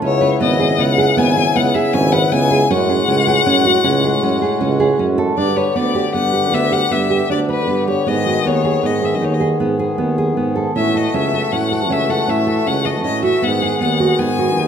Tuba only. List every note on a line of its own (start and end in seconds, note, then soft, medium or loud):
0.03 0.34 C#2 medium
0.42 0.72 G#1 medium
0.79 1.10 C#2 medium
1.17 1.48 G#1 medium
1.56 1.71 C#2 medium
1.94 2.25 G#1 medium
2.32 2.63 C#2 medium
2.70 3.01 F#2 loud
3.08 3.39 C#2 medium
3.46 3.78 F#2 medium
3.84 4.16 C#2 medium
4.23 4.39 F#2 medium
4.61 4.92 C#2 medium
5.00 5.31 F#2 medium
5.38 5.69 G2 medium
5.76 6.07 D2 medium
6.16 6.55 G2 medium
6.54 6.84 D2 medium
6.92 7.23 G2 medium
7.30 7.70 D2 medium
7.69 7.99 G2 medium
8.07 8.38 G#2 medium
8.46 8.76 D#2 medium
8.84 9.23 G#2 medium
9.22 9.53 D#2 medium
9.61 9.91 G#2 medium
9.98 10.39 D#2 medium
10.38 10.68 G#2 medium
10.76 11.06 A2 medium
11.13 11.44 C#2 medium
11.52 11.92 A2 medium
11.90 12.21 C#2 medium
12.28 12.59 A2 medium
12.67 13.06 C#2 medium
13.05 13.36 A2 medium
13.43 13.74 G#2 medium
13.81 14.12 D#2 medium
14.20 14.59 G#2 medium
14.57 14.68 D#2 medium